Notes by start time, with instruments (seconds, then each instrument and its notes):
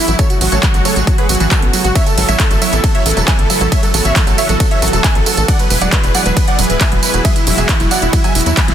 Already playing: analog synth pad C#3 E3 A3 B3 E4
0.08 analog synth bass A1, synth pluck F#3, grand piano E4, supersaw synth E4, closed hi-hat, tambourine
0.19 analog synth pad C#3 F#3 G#3 F#4, synth pluck F#3, supersaw synth A4 C#5, grand piano C#5, kick, closed hi-hat, tambourine
0.30 grand piano F#4, supersaw synth F#4, closed hi-hat, tambourine
0.41 analog synth bass A1, synth pluck F#3, grand piano F#4, supersaw synth F#4, open hi-hat, tambourine
0.52 analog synth bass A1, synth pluck F#3, supersaw synth A4 C#5, grand piano C#5, closed hi-hat, tambourine
0.63 grand piano F#4, supersaw synth F#4, kick, clap, closed hi-hat, tambourine
0.74 analog synth bass A1, synth pluck F#3, grand piano F#4, supersaw synth F#4, closed hi-hat, tambourine
0.85 synth pluck F#3, supersaw synth A4 C#5, grand piano C#5, open hi-hat, tambourine
0.96 analog synth bass A1, grand piano F#4, supersaw synth F#4, closed hi-hat, tambourine
1.07 synth pluck F#3, grand piano F#4, supersaw synth F#4, kick, closed hi-hat, tambourine
1.18 synth pluck F#3, supersaw synth G#4 B4, grand piano B4, closed hi-hat
1.29 analog synth bass A1, supersaw synth F#4, grand piano F#4, open hi-hat, tambourine
1.35 closed hi-hat
1.40 analog synth bass A1, synth pluck E3, supersaw synth F#4, grand piano F#4, closed hi-hat, tambourine
1.51 synth pluck C#4, supersaw synth F#4 A4, grand piano A4, kick, clap, closed hi-hat, tambourine
1.62 analog synth bass A1, synth pluck B3, supersaw synth F#4, grand piano F#4, closed hi-hat
1.73 synth pluck F#3, supersaw synth F#4, grand piano F#4, open hi-hat, tambourine
1.84 analog synth bass A1, supersaw synth F#4, grand piano F#4, synth pluck F#4, closed hi-hat, tambourine
1.95 analog synth pad E3 B3 E4, synth pluck F#3, supersaw synth C#5 E5, grand piano E5, kick, closed hi-hat, ride, tambourine
2.07 supersaw synth A4, grand piano A4, closed hi-hat, tambourine
2.17 analog synth bass A1, synth pluck F#3, supersaw synth A4, grand piano A4, open hi-hat, tambourine
2.29 analog synth bass A1, synth pluck F#3, supersaw synth C#5 E5, grand piano E5, closed hi-hat, tambourine
2.40 supersaw synth A4, grand piano A4, kick, clap, closed hi-hat, ride, tambourine
2.51 analog synth bass A1, synth pluck F#3, supersaw synth A4, grand piano A4, closed hi-hat, tambourine
2.62 synth pluck F#3, supersaw synth C#5 E5, grand piano E5, open hi-hat, tambourine
2.73 analog synth bass A1, supersaw synth A4, grand piano A4, closed hi-hat, tambourine
2.84 synth pluck F#3, supersaw synth A4, grand piano A4, kick, closed hi-hat, ride, tambourine
2.95 synth pluck F#3, supersaw synth C#5 E5, grand piano E5, closed hi-hat
3.06 analog synth bass A1, supersaw synth A4, grand piano A4, open hi-hat, tambourine
3.11 closed hi-hat
3.17 analog synth bass E1, synth pluck F#3, grand piano A4, supersaw synth A4, closed hi-hat, tambourine
3.28 synth pluck F#3, supersaw synth E5 G#5, grand piano G#5, kick, clap, closed hi-hat, ride, tambourine
3.39 analog synth bass A1, grand piano A4, supersaw synth A4, closed hi-hat
3.50 synth pluck F#3, grand piano A4, supersaw synth A4, open hi-hat, tambourine
3.61 analog synth bass A1, synth pluck F#3, grand piano A4, supersaw synth A4, closed hi-hat, tambourine
3.72 analog synth pad F#4, supersaw synth C#5 E5, grand piano E5, kick, closed hi-hat, ride, tambourine
3.83 synth pluck F#3, supersaw synth A4, grand piano A4, closed hi-hat, tambourine
3.94 analog synth bass A1, synth pluck F#3, grand piano A4, supersaw synth A4, open hi-hat, tambourine
4.05 analog synth bass A1, supersaw synth C#5 E5, grand piano E5, closed hi-hat, tambourine
4.16 synth pluck F#3, grand piano A4, supersaw synth A4, kick, clap, closed hi-hat, ride, tambourine
4.27 analog synth bass A1, synth pluck F#3, supersaw synth A4, grand piano A4, closed hi-hat, tambourine
4.38 supersaw synth C#5 E5, grand piano E5, open hi-hat, tambourine
4.49 analog synth bass A1, synth pluck F#3, grand piano A4, supersaw synth A4, closed hi-hat, tambourine
4.60 synth pluck F#3, grand piano A4, supersaw synth A4, kick, closed hi-hat, ride, tambourine
4.71 supersaw synth C#5 E5, grand piano E5, closed hi-hat
4.82 analog synth bass A1, synth pluck F#3, grand piano A4, supersaw synth A4, open hi-hat, tambourine
4.88 closed hi-hat
4.93 analog synth bass E1, synth pluck F#3, grand piano A4, supersaw synth A4, closed hi-hat, tambourine
5.04 supersaw synth E5 G#5, grand piano G#5, kick, clap, closed hi-hat, ride, tambourine
5.15 analog synth bass A1, synth pluck F#3, supersaw synth A4, grand piano A4, closed hi-hat
5.26 synth pluck F#3, supersaw synth A4, grand piano A4, open hi-hat, tambourine
5.37 analog synth bass A1, grand piano A4, supersaw synth A4, closed hi-hat, tambourine
5.48 analog synth pad B2 E3 G#3 E4 G#4, synth pluck F#3, supersaw synth D5 F#5, grand piano F#5, kick, closed hi-hat, ride, tambourine
5.59 synth pluck F#3, grand piano B4, supersaw synth B4, closed hi-hat, tambourine
5.70 analog synth bass E1, supersaw synth B4, grand piano B4, open hi-hat, tambourine
5.81 analog synth bass E1, synth pluck F#3, supersaw synth D5 F#5, grand piano F#5, closed hi-hat, tambourine
5.92 supersaw synth B4, grand piano B4, kick, clap, closed hi-hat, ride, tambourine
6.04 analog synth bass E1, grand piano B4, supersaw synth B4, closed hi-hat, tambourine
6.15 synth pluck F#3, supersaw synth D5 F#5, grand piano F#5, open hi-hat, tambourine
6.26 analog synth bass E1, synth pluck F#3, grand piano B4, supersaw synth B4, closed hi-hat, tambourine
6.37 supersaw synth B4, kick, closed hi-hat, ride, tambourine
6.48 synth pluck F#3, supersaw synth D5 F#5, grand piano F#5, closed hi-hat
6.59 analog synth bass E1, synth pluck F#3, grand piano B4, supersaw synth B4, open hi-hat, tambourine
6.64 closed hi-hat
6.70 analog synth bass D1, grand piano B4, supersaw synth B4, closed hi-hat, tambourine
6.81 synth pluck F#3, supersaw synth E5 G#5, grand piano G#5, kick, clap, closed hi-hat, ride, tambourine
6.92 analog synth bass E1, synth pluck F#3, grand piano B4, supersaw synth B4, closed hi-hat
7.03 grand piano B4, supersaw synth B4, open hi-hat, tambourine
7.14 analog synth bass E1, synth pluck F#3, supersaw synth B4, closed hi-hat
7.25 synth pluck F#3, analog synth pad F#4, supersaw synth G#4 E5, grand piano E5, kick, closed hi-hat, ride, tambourine
7.36 grand piano E4, supersaw synth E4, closed hi-hat, tambourine
7.47 analog synth bass E1, synth pluck F#3, supersaw synth E4, grand piano E4, open hi-hat, tambourine
7.58 analog synth bass E1, synth pluck F#3, supersaw synth G#4 E5, grand piano E5, closed hi-hat, tambourine
7.69 grand piano E4, supersaw synth E4, kick, clap, closed hi-hat, ride, tambourine
7.80 analog synth bass E1, synth pluck F#3, supersaw synth E4, grand piano E4, closed hi-hat, tambourine
7.91 synth pluck F#3, supersaw synth D5 F#5, grand piano F#5, open hi-hat, tambourine
8.02 analog synth bass E1, grand piano E4, supersaw synth E4, closed hi-hat, tambourine
8.13 synth pluck F#3, grand piano E4, supersaw synth E4, kick, closed hi-hat, ride, tambourine
8.24 synth pluck F#3, supersaw synth E5 G#5, grand piano G#5, closed hi-hat, tambourine
8.35 analog synth bass E1, supersaw synth E4, grand piano E4, open hi-hat, tambourine
8.41 closed hi-hat
8.46 analog synth bass E2, synth pluck F#3, supersaw synth E4, grand piano E4, closed hi-hat, tambourine
8.57 synth pluck F#3, supersaw synth G#5 B5, grand piano B5, kick, clap, closed hi-hat, ride, tambourine
8.68 analog synth bass E1, supersaw synth E4, grand piano E4, snare, closed hi-hat